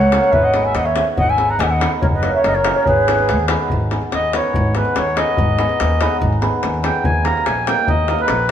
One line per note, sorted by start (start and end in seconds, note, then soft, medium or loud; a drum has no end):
0.00 0.16 C#2 loud
0.00 0.33 C#5 medium
0.00 0.33 F#5 loud
0.00 davul high soft
0.12 0.28 A#3 medium
0.12 0.29 C#4 medium
0.12 0.29 F#4 medium
0.12 0.29 A#4 medium
0.12 davul high medium
0.23 davul high soft
0.32 0.76 G#1 medium
0.32 0.44 B4 loud
0.32 0.45 E5 medium
0.32 davul low medium
0.42 0.64 D#5 medium
0.42 0.66 F#5 medium
0.54 0.70 B3 medium
0.54 0.71 D#4 soft
0.54 0.71 G#4 medium
0.54 0.71 B4 medium
0.54 davul high medium
0.64 0.75 E5 medium
0.64 0.76 G#5 medium
0.74 1.00 D#2 loud
0.74 0.85 D#5 medium
0.74 0.86 F#5 loud
0.74 davul high medium
0.85 1.06 C#5 medium
0.85 1.06 E5 medium
0.85 davul high soft
0.96 1.13 B3 medium
0.96 1.13 D#4 medium
0.96 1.13 G#4 medium
0.96 1.13 B4 medium
0.96 davul high medium
1.17 1.60 G#1 medium
1.17 1.28 D#5 loud
1.17 1.31 F#5 loud
1.17 davul low medium
1.29 1.49 E5 medium
1.29 1.51 G#5 loud
1.38 1.55 B3 medium
1.38 1.55 D#4 soft
1.38 1.55 G#4 medium
1.38 1.55 B4 medium
1.38 davul high medium
1.50 1.60 F#5 medium
1.50 1.61 A#5 medium
1.59 1.84 D#2 loud
1.59 1.65 D#5 medium
1.59 1.65 G#5 loud
1.59 davul high medium
1.63 1.70 E5 medium
1.63 1.67 F#5 medium
1.63 1.72 G#5 medium
1.71 1.92 D#5 medium
1.71 1.92 F#5 medium
1.80 1.97 B3 medium
1.80 1.97 D#4 medium
1.80 1.98 G#4 medium
1.80 1.98 B4 medium
1.80 davul high medium
2.01 2.28 F#1 loud
2.01 2.07 A#4 loud
2.01 2.06 C#5 loud
2.01 davul low medium
2.13 2.34 B4 medium
2.13 2.33 D#5 medium
2.23 2.39 A#3 medium
2.23 2.40 C#4 soft
2.23 2.40 F#4 medium
2.23 2.40 A#4 medium
2.23 davul high medium
2.34 2.44 C#5 medium
2.34 2.43 E5 medium
2.44 2.69 F#1 loud
2.44 2.54 A#4 medium
2.44 2.56 D#5 loud
2.44 davul high medium
2.55 2.76 A#4 medium
2.55 2.74 C#5 medium
2.55 davul high soft
2.64 2.81 A#3 medium
2.64 2.81 C#4 medium
2.64 2.82 F#4 medium
2.64 2.82 A#4 medium
2.64 davul high medium
2.74 2.86 A#4 medium
2.74 2.85 C#5 medium
2.86 3.31 G#1 medium
2.86 3.46 G#4 loud
2.86 3.46 B4 loud
2.86 davul low medium
3.08 3.24 B3 medium
3.08 3.24 D#4 medium
3.08 3.24 G#4 medium
3.08 3.25 B4 medium
3.08 davul high medium
3.19 davul high soft
3.29 3.54 D#2 loud
3.29 davul high medium
3.39 davul high soft
3.48 3.65 B3 medium
3.48 3.66 D#4 medium
3.48 3.66 G#4 medium
3.48 3.66 B4 medium
3.48 davul high medium
3.60 davul high soft
3.70 3.96 G#1 medium
3.70 davul low medium
3.91 4.08 B3 medium
3.91 4.08 D#4 medium
3.91 4.08 G#4 medium
3.91 4.09 B4 medium
3.91 davul high medium
4.02 davul high soft
4.12 4.38 D#2 medium
4.12 4.35 D#5 loud
4.12 davul high medium
4.33 4.50 B3 medium
4.33 4.50 D#4 soft
4.33 4.50 G#4 soft
4.33 4.51 B4 medium
4.33 4.74 C#5 medium
4.33 davul high medium
4.54 4.80 G#1 loud
4.54 davul low medium
4.75 4.92 B3 medium
4.75 4.92 D#4 soft
4.75 4.92 G#4 medium
4.75 4.93 B4 medium
4.75 4.98 B4 medium
4.75 davul high medium
4.85 davul high soft
4.96 5.22 D#2 medium
4.96 5.19 C#5 medium
4.96 davul high medium
5.16 5.33 B3 medium
5.16 5.34 D#4 medium
5.16 5.34 G#4 medium
5.16 5.34 B4 medium
5.16 6.17 D#5 loud
5.16 davul high medium
5.37 5.63 G#1 loud
5.37 davul low medium
5.58 5.75 B3 medium
5.58 5.75 D#4 medium
5.58 5.76 G#4 medium
5.58 5.76 B4 medium
5.58 davul high medium
5.69 davul high soft
5.80 6.06 D#2 loud
5.80 davul high medium
6.01 6.18 B3 medium
6.01 6.18 D#4 medium
6.01 6.18 G#4 medium
6.01 6.18 B4 medium
6.01 davul high medium
6.21 6.47 G#1 loud
6.21 davul low medium
6.33 davul high soft
6.41 6.58 B3 medium
6.41 6.59 D#4 medium
6.41 6.59 G#4 medium
6.41 6.59 B4 medium
6.41 davul high medium
6.63 6.88 D#2 loud
6.63 davul high medium
6.74 davul high soft
6.83 7.00 B3 medium
6.83 7.00 D#4 medium
6.83 7.01 G#4 medium
6.83 7.01 B4 medium
6.83 7.04 G5 medium
6.83 davul high medium
6.94 davul high soft
7.04 7.30 D#2 medium
7.04 7.26 G#5 loud
7.04 davul low medium
7.24 7.42 A#3 medium
7.24 7.42 D#4 soft
7.24 7.43 G4 medium
7.24 7.43 A#4 medium
7.24 7.44 A#5 loud
7.24 davul high medium
7.37 davul high soft
7.45 7.72 A#1 medium
7.45 7.67 G#5 loud
7.45 davul high medium
7.67 7.84 A#3 medium
7.67 7.84 D#4 medium
7.67 7.84 G4 medium
7.67 7.85 A#4 medium
7.67 7.89 G5 loud
7.67 davul high medium
7.87 8.13 D#2 loud
7.87 8.21 D#5 loud
7.87 davul low medium
8.08 8.25 A#3 medium
8.08 8.25 D#4 soft
8.08 8.26 G4 medium
8.08 8.26 A#4 medium
8.08 davul high medium
8.19 8.49 B4 loud
8.19 davul high soft
8.28 8.51 A#1 loud
8.28 davul high medium